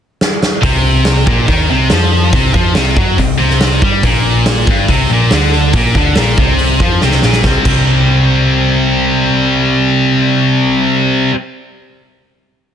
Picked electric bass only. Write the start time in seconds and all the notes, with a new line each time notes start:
0.63 C2
1.26 A#1
1.48 D#2
1.71 C2
1.91 F2
2.33 C2
2.54 F2
2.76 C2
2.96 F#2
3.18 C2
3.40 C2
3.82 G2
4.03 A#1
4.67 G1
4.89 C2
5.09 A#1
5.32 D2
5.73 A#1
5.95 D2
6.17 A#1
6.37 C2
6.80 F2
7.02 C2
7.23 A#1
7.44 C2
7.66 C2